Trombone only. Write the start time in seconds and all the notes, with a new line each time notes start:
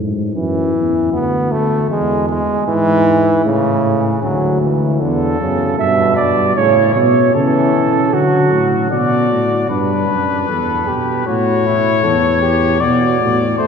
0.36 E3
1.13 B3
1.52 A3
1.90 G#3
2.29 G#3
2.67 E3
3.45 C#3
4.23 F#3
4.62 E3
5.02 D3
5.40 C#3
5.79 B2
6.57 C#3
7.36 E3
8.13 F#3
13.59 A3